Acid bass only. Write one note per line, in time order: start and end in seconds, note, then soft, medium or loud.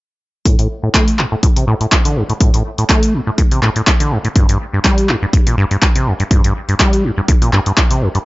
0.45 0.57 A2 medium
0.59 0.68 A2 medium
0.83 0.89 A2 medium
0.94 1.20 A3 loud
1.19 1.26 A2 loud
1.32 1.36 A2 medium
1.43 1.47 A2 loud
1.56 1.65 C3 medium
1.67 1.75 A2 loud
1.81 1.87 A2 medium
1.92 1.96 A3 loud
2.05 2.18 D3 medium
2.16 2.24 G2 loud
2.30 2.33 A2 medium
2.41 2.52 A2 medium
2.54 2.63 A2 medium
2.78 2.84 A2 medium
2.89 3.15 A3 loud
3.14 3.21 A2 loud
3.27 3.31 A2 medium
3.38 3.43 A2 loud
3.52 3.61 C3 medium
3.62 3.70 A2 loud
3.76 3.82 A2 medium
3.87 3.91 A3 loud
4.00 4.13 D3 medium
4.11 4.19 G2 loud
4.25 4.28 A2 medium
4.36 4.47 G2 medium
4.49 4.58 G2 medium
4.73 4.80 G2 medium
4.84 5.10 G3 loud
5.09 5.16 G2 loud
5.22 5.26 G2 medium
5.33 5.38 G2 loud
5.47 5.56 A#2 medium
5.58 5.65 G2 loud
5.71 5.77 G2 medium
5.82 5.87 G3 loud
5.96 6.08 C3 medium
6.07 6.14 F2 loud
6.20 6.24 G2 medium
6.31 6.42 G2 medium
6.44 6.53 G2 medium
6.69 6.75 G2 medium
6.80 7.06 G3 loud
7.04 7.11 G2 loud
7.18 7.21 G2 medium
7.28 7.33 G2 loud
7.42 7.51 A#2 medium
7.53 7.60 G2 loud
7.66 7.72 G2 medium
7.77 7.82 G3 loud
7.91 8.03 C3 medium
8.02 8.09 F2 loud
8.15 8.19 G2 medium